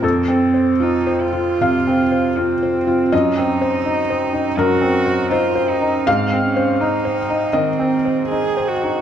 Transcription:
<<
  \new Staff \with { instrumentName = "Felt piano" } { \time 4/4 \key f \phrygian \tempo 4 = 80 << { a'2 f''2 | ees''2 bes'4 c''4 | f''2 ees''2 | } \\ { \tuplet 3/2 { f,8 c'8 c''8 f'8 c''8 f'8 c8 c'8 c''8 f'8 c''8 f'8 } | \tuplet 3/2 { ges,8 c'8 c''8 ees'8 c''8 ees'8 ges,8 c'8 c''8 ees'8 c''8 ees'8 } | \tuplet 3/2 { aes,8 c'8 c''8 ees'8 c''8 ees'8 ees8 c'8 c''8 ees'8 c''8 ees'8 } | } >> }
  \new Staff \with { instrumentName = "Cello" } { \time 4/4 \key f \phrygian c'4 ees'8 f'4. c'4 | ees'2 ges'4 f'8 ees'8 | c'8 des'8 ees'4 c'4 aes'8 ges'8 | }
>>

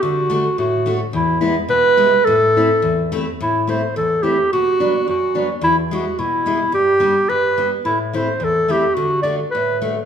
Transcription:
<<
  \new Staff \with { instrumentName = "Clarinet" } { \time 2/4 \key a \dorian \tempo 4 = 107 fis'4 fis'8. r16 | e'8 r8 b'4 | a'4. r8 | e'8 c''8 a'8 g'8 |
fis'4 fis'8. r16 | e'8 fis'8 e'4 | g'4 b'8. r16 | e'8 c''8 a'8 g'8 |
fis'8 d''8 b'8 r8 | }
  \new Staff \with { instrumentName = "Steel-string acoustic guitar" } { \time 2/4 \key a \dorian << { r8 <a d' fis'>8 r8 <a d' fis'>8 | r8 <gis b e'>8 r8 <gis b e'>8 | r8 <a c' e'>8 r8 <a c' e'>8 | r8 <a c' e'>8 r8 <a c' e'>8 |
r8 <fis b d'>8 r8 <fis b d'>8 | r8 <gis b e'>8 r8 <gis b e'>8 | r8 <g b d'>8 r8 <g b d'>8 | r8 <a c' e'>8 r8 <a c' e'>8 |
r8 <a d' fis'>8 r8 <a d' fis'>8 | } \\ { d4 a,4 | e,4 b,4 | a,4 e,4 | a,4 e,4 |
b,4 fis,4 | e,4 b,4 | g,4 g,4 | a,4 e,4 |
d4 a,4 | } >> }
>>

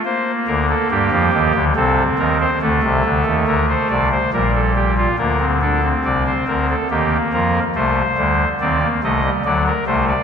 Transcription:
<<
  \new Staff \with { instrumentName = "Pipe organ" } { \time 3/4 \key g \minor \tempo 4 = 70 c''8 bes'16 a'16 g'4 a'8 bes'16 c''16 | a'4 bes'16 c''16 d''16 c''16 bes'16 a'16 g'16 f'16 | bes'8 a'8 d''16 c''16 bes'16 a'16 g'8 bes'8 | c''4 d''8 ees''8 d''16 bes'16 c''16 d''16 | }
  \new Staff \with { instrumentName = "Pipe organ" } { \clef bass \time 3/4 \key g \minor << { bes2 c'4 | a2 g4 | bes16 c'16 d'16 c'4~ c'16 bes4 | a8 g8 c'16 bes16 a16 g16 fis8 a8 | } \\ { r8 <d, d>8 <g, g>16 <f, f>16 <ees, ees>16 <d, d>16 <c, c>8 <ees, ees>8 | <d, d>16 <c, c>16 <d, d>16 <ees, ees>16 <d, d>8 <c, c>8 <bes,, bes,>4 | <d, d>4 <c, c>8 <d, d>8 <ees, ees>8 <f, f>8 | <c, c>8 <d, d>8 <ees, ees>8 <c, c>8 <d, d>8 <c, c>8 | } >> }
>>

